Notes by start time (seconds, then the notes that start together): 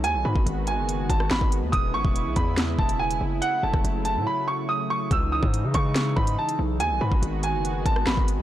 Already playing: G#3
0.04 D#2 D#3 B3 F#4 G#5, closed hi-hat
0.14 B1
0.25 G#2 B5
0.36 G#1, kick
0.46 G#1, closed hi-hat
0.67 G#5, closed hi-hat
0.78 F#1
0.89 closed hi-hat
1.10 G#1 A5, kick, closed hi-hat
1.20 cross-stick
1.31 G#1 B5, snare, clap
1.41 G#1, kick
1.52 closed hi-hat
1.62 D#2
1.72 E1 C#3 E4 D#6, kick, closed hi-hat
1.94 G#1 C#6
2.05 E1, kick
2.16 closed hi-hat
2.26 B1
2.36 E2 B5, kick, closed hi-hat
2.57 snare, clap, closed hi-hat
2.79 E1 A5, kick
2.89 closed hi-hat
2.99 G#5
3.11 closed hi-hat
3.21 F#1
3.42 F#3 A3 F#5, closed hi-hat
3.63 F#1 A5
3.74 F#1, kick, cross-stick
3.84 F#1, closed hi-hat
4.05 A5, closed hi-hat
4.16 A2
4.27 B5
4.48 C#6
4.69 D#6
4.90 C#6
5.11 C#2 E3 G#3 D#4 E6, kick, closed hi-hat
5.32 D#6
5.43 G#2, kick
5.54 closed hi-hat
5.64 C#3
5.74 C#3 C#6, kick, closed hi-hat
5.95 snare, clap, closed hi-hat
6.16 G#2 B5, kick
6.27 closed hi-hat
6.39 A5
6.49 closed hi-hat
6.59 B1
6.80 D#2 D#3 G#3 B3 F#4 G#5, closed hi-hat
6.91 B1
7.01 G#2 B5
7.12 G#1, kick
7.22 G#1, closed hi-hat
7.43 G#5, closed hi-hat
7.54 F#1
7.65 closed hi-hat
7.86 G#1 A5, kick, closed hi-hat
7.96 cross-stick
8.07 G#1 B5, snare, clap
8.17 G#1, kick
8.28 closed hi-hat
8.38 D#2